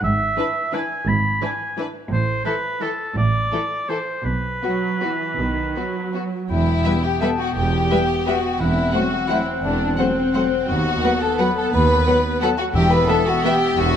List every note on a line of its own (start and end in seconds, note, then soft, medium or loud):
0.03 0.30 G#1 medium
0.03 0.31 G#2 medium
0.03 0.76 E5 medium
0.38 0.46 E3 soft
0.38 0.46 D4 soft
0.38 0.46 B4 soft
0.73 0.81 E3 soft
0.73 0.81 D4 soft
0.73 0.81 B4 soft
0.73 1.09 G#5 medium
1.07 1.34 G#1 medium
1.07 1.35 G#2 medium
1.07 1.42 B5 medium
1.42 1.50 E3 soft
1.42 1.50 D4 soft
1.42 1.50 B4 soft
1.42 1.77 G#5 medium
1.78 1.86 E3 soft
1.78 1.86 D4 soft
1.78 1.86 B4 soft
2.11 2.38 A1 medium
2.11 2.38 A2 medium
2.11 2.43 C5 medium
2.45 2.53 E3 soft
2.45 2.54 E4 soft
2.45 2.54 A4 soft
2.45 2.83 B4 medium
2.81 2.89 E3 soft
2.81 2.90 E4 soft
2.81 3.17 A4 medium
2.81 2.90 A4 soft
3.17 3.45 A1 medium
3.17 3.45 A2 medium
3.17 3.90 D5 medium
3.52 3.61 E3 soft
3.52 3.60 E4 soft
3.52 3.60 A4 soft
3.89 3.97 E3 soft
3.89 3.97 E4 soft
3.89 3.98 A4 soft
3.89 4.26 C5 medium
4.25 4.54 B1 soft
4.25 4.55 B2 medium
4.25 6.32 B4 medium
4.62 4.99 F#3 soft
4.62 4.71 B3 soft
4.62 4.72 F#4 soft
5.02 5.39 E3 soft
5.02 5.11 B3 soft
5.02 5.10 F#4 soft
5.38 5.67 B1 soft
5.38 5.68 B2 soft
5.38 5.76 D#3 soft
5.76 6.50 F#3 soft
5.76 5.84 B3 soft
5.76 5.85 F#4 soft
6.14 6.22 B3 soft
6.14 6.22 F#4 soft
6.49 6.79 E1 soft
6.49 6.79 E2 medium
6.49 8.62 B3 soft
6.49 7.00 E4 medium
6.49 7.00 E5 medium
6.49 8.56 G5 soft
6.85 6.98 G3 soft
6.85 6.93 G3 soft
6.85 6.98 B3 soft
6.85 6.94 B4 soft
6.85 6.93 E5 soft
7.03 7.21 G4 medium
7.03 7.22 G5 medium
7.21 7.34 G3 soft
7.21 7.30 G3 soft
7.21 7.34 B3 soft
7.21 7.28 A4 medium
7.21 7.30 B4 soft
7.21 7.30 E5 soft
7.21 7.39 A5 medium
7.39 7.55 F#4 medium
7.39 7.56 F#5 medium
7.55 7.84 E1 medium
7.55 7.85 E2 medium
7.55 8.25 G4 medium
7.55 8.26 G5 medium
7.91 7.99 G3 soft
7.91 8.04 G3 soft
7.91 8.04 B3 soft
7.91 7.99 B4 soft
7.91 7.99 E5 soft
8.26 8.38 G3 soft
8.26 8.34 G3 soft
8.26 8.39 B3 soft
8.26 8.60 F#4 medium
8.26 8.34 B4 soft
8.26 8.35 E5 soft
8.26 8.60 F#5 medium
8.59 8.88 E1 medium
8.59 8.88 E2 medium
8.59 10.68 C4 medium
8.59 8.93 E4 medium
8.59 8.94 E5 medium
8.59 10.64 F#5 medium
8.93 9.07 F#3 soft
8.93 9.02 A3 soft
8.93 9.07 C4 soft
8.93 9.29 F#4 medium
8.93 9.02 C5 soft
8.93 9.02 F#5 soft
8.93 9.29 F#5 medium
9.29 9.42 F#3 soft
9.29 9.38 A3 soft
9.29 9.42 C4 soft
9.29 9.47 E4 medium
9.29 9.38 C5 soft
9.29 9.36 E5 medium
9.29 9.37 F#5 soft
9.47 9.63 C4 medium
9.47 9.64 C5 medium
9.63 9.92 E1 medium
9.63 9.91 E2 medium
9.63 9.97 D4 medium
9.63 9.98 D5 medium
9.98 10.11 F#3 soft
9.98 10.06 A3 soft
9.98 10.11 C4 soft
9.98 10.67 C4 medium
9.98 10.69 C5 medium
9.98 10.06 C5 soft
9.98 10.06 F#5 soft
10.33 10.46 F#3 soft
10.33 10.42 A3 soft
10.33 10.46 C4 soft
10.33 10.42 C5 soft
10.33 10.43 F#5 soft
10.68 10.97 D#2 medium
10.68 12.57 B3 medium
10.68 11.21 F#4 medium
10.68 12.71 F#5 medium
10.68 11.19 F#5 medium
11.02 11.15 F#3 soft
11.02 11.11 F#3 soft
11.02 11.15 B3 medium
11.02 11.12 B4 soft
11.02 11.11 F#5 soft
11.20 11.38 A4 medium
11.20 11.38 A5 medium
11.38 11.51 F#3 soft
11.38 11.47 F#3 soft
11.38 11.51 B3 soft
11.38 11.56 B4 medium
11.38 11.47 B4 soft
11.38 11.47 F#5 medium
11.38 11.56 B5 medium
11.56 11.72 A4 medium
11.56 11.73 A5 medium
11.72 12.00 D#2 medium
11.72 12.01 D#2 medium
11.72 12.40 B4 medium
11.72 12.20 B5 medium
12.06 12.19 F#3 soft
12.06 12.15 F#3 soft
12.06 12.19 B3 soft
12.06 12.15 B4 soft
12.06 12.15 F#5 soft
12.41 12.54 F#3 medium
12.41 12.50 F#3 medium
12.41 12.54 B3 medium
12.41 12.48 A4 medium
12.41 12.50 B4 soft
12.41 12.50 F#5 medium
12.41 12.58 A5 medium
12.58 12.64 F#4 medium
12.58 12.75 F#5 medium
12.74 13.03 E1 medium
12.74 13.03 E2 medium
12.74 13.23 E2 medium
12.74 13.97 B3 medium
12.74 12.90 G4 medium
12.74 13.97 E5 medium
12.74 12.91 G5 medium
12.91 13.09 B4 medium
12.91 13.09 B5 medium
13.08 13.22 E3 medium
13.08 13.17 B3 medium
13.08 13.22 B3 medium
13.08 13.26 A4 medium
13.08 13.17 B4 soft
13.08 13.17 E5 soft
13.08 13.27 A5 medium
13.27 13.45 F#4 medium
13.27 13.45 F#5 medium
13.44 13.57 E3 medium
13.44 13.52 B3 medium
13.44 13.57 B3 medium
13.44 13.78 G4 medium
13.44 13.52 B4 medium
13.44 13.53 E5 medium
13.44 13.78 G5 medium
13.78 13.97 E1 medium
13.78 13.97 E2 medium
13.78 13.97 F#4 medium
13.78 13.97 F#5 medium